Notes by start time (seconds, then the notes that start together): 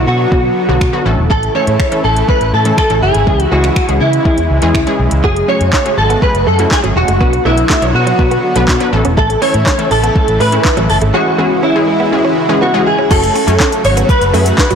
Already playing: D3 F#3 B3 F#4
0.07 B2 F#4
0.32 B2 D3 F#3 B3 F#4, kick
0.69 B1 D3 F#3 B3 F#4
0.81 B2, finger snap, kick
0.93 D3 F#3 B3 F#4
1.05 A1 C#3 E3 A3 C#4 E4 A4
1.18 E1
1.30 A1 A4, kick
1.43 closed hi-hat
1.55 E3 A3 C#4 A4 C#5
1.67 A2, closed hi-hat
1.80 finger snap, kick
1.91 E3 A3 C#4 A4, closed hi-hat
2.04 A1 A4
2.16 closed hi-hat
2.28 E3 A3 C#4 A4 B4, kick
2.41 A1, closed hi-hat
2.54 A2 A4
2.65 E3 A3 C#4 A4, closed hi-hat
2.78 A4, finger snap, kick
2.90 A1 E3 A3 C#4 A4, closed hi-hat
3.02 F#1 G#4
3.14 G#1, closed hi-hat
3.27 C#2 C#3 E3 G#3 C#4 G#4, kick
3.40 closed hi-hat
3.52 C#2 E3 G#3 C#4 F#4 G#4
3.64 finger snap, closed hi-hat
3.76 finger snap, kick
3.89 C#2 E3 G#3 C#4 G#4, closed hi-hat
4.00 C#3 E4
4.13 closed hi-hat
4.25 E3 G#3 C#4 G#4, kick
4.38 E2, closed hi-hat
4.50 C#2
4.62 E2 E3 G#3 C#4 G#4, closed hi-hat
4.75 finger snap, kick
4.87 E3 G#3 C#4 G#4, closed hi-hat
4.99 B1
5.11 C#2, closed hi-hat
5.24 F#3 A3 C#4 F#4 G#4, kick
5.36 muted clean electric guitar stroke, closed hi-hat
5.48 F#3 A3 C#4 G#4 C#5
5.61 F#2, closed hi-hat
5.73 C#4, kick, snare, clap
5.85 F#3 A3 C#4 G#4, closed hi-hat
5.98 G#1 A4, muted clean electric guitar stroke
6.10 B3, closed hi-hat
6.22 F#3 A3 C#4 G#4 B4, kick
6.34 F#1, closed hi-hat
6.47 F#2 A3 A4
6.59 F#3 A3 C#4 E4, closed hi-hat
6.71 G#4, kick, snare, clap
6.84 G#1 F#3 A3 C#4 G#4, closed hi-hat
6.96 E1 F#4, muted clean electric guitar stroke
7.08 F#1 G#3, closed hi-hat
7.20 B1 D3 F#3 B3 D4 F#4 B4, kick
7.33 muted clean electric guitar stroke, closed hi-hat
7.45 B1 F#3 A3 B3 D4 E4 B4
7.58 closed hi-hat
7.70 A3, kick, snare, clap
7.82 B1 F#3 B3 D4 C#5, closed hi-hat
7.94 B2 F#4, muted clean electric guitar stroke
8.07 F#3, closed hi-hat
8.19 B2 F#3 B3 D4 B4, kick
8.31 B3, closed hi-hat
8.44 muted clean electric guitar stroke
8.56 B1 F#3 A3 B3 D4 B4, closed hi-hat
8.68 B2 B3, kick, snare, clap
8.80 F#3 B3 D4 B4, muted clean electric guitar stroke, closed hi-hat
8.93 A1 C#3 E3 A3 C#4 E4 A4
9.05 E1 C#4, closed hi-hat
9.17 A3 A4, kick
9.30 muted clean electric guitar stroke, closed hi-hat
9.42 E3 A3 C#4 A4 C#5, open hi-hat
9.54 A2, closed hi-hat
9.66 C#4, kick, snare, clap
9.79 E3 A3 C#4 A4, closed hi-hat
9.91 A1 A4, muted clean electric guitar stroke, open hi-hat
10.03 B3, closed hi-hat
10.15 E3 A3 C#4 A4, kick
10.28 A1, closed hi-hat
10.40 A2 A3 B4, open hi-hat
10.52 E3 A3 C#4 E4, closed hi-hat
10.65 kick, snare, clap
10.77 A1 E3 F#3 A3 C#4 A4, closed hi-hat
10.89 F#1 A4, muted clean electric guitar stroke, open hi-hat
11.01 G#1 A3, closed hi-hat
11.14 E3 G#3 C#4 E4 F#4 G#4, swell
11.26 muted clean electric guitar stroke
11.38 E3 G#3 B3 C#4 G#4
11.63 C#4 E4
11.75 E3 G#3 C#4 G#4
11.88 muted clean electric guitar stroke
12.00 B3
12.12 E3 G#3 C#4 G#4
12.25 C#4
12.37 muted clean electric guitar stroke
12.49 E3 G#3 C#4 G#4
12.62 B3 F#4
12.74 E3 G#3 C#4 G#4, muted clean electric guitar stroke
12.87 G#4
12.99 C#4
13.11 F#1 C#3 F#3 A3 C#4 F#4 G#4 A4 C#5, kick, crash, shaker
13.23 muted clean electric guitar stroke, closed hi-hat, shaker
13.35 C#4, open hi-hat, shaker
13.47 F#2 A3 C#4 F#4 C#5 G#5, closed hi-hat, shaker
13.60 C#4, kick, snare, clap, shaker
13.72 closed hi-hat, shaker
13.85 G#1 C#5, muted clean electric guitar stroke, open hi-hat, shaker
13.97 B3, closed hi-hat, shaker
14.09 B4, kick, shaker
14.21 F#1, closed hi-hat, shaker
14.33 F#2 A3 C#4 F#4 G#4 E5, open hi-hat, shaker
14.46 closed hi-hat, shaker
14.58 kick, snare, clap, shaker
14.71 G#1 F#3, closed hi-hat, shaker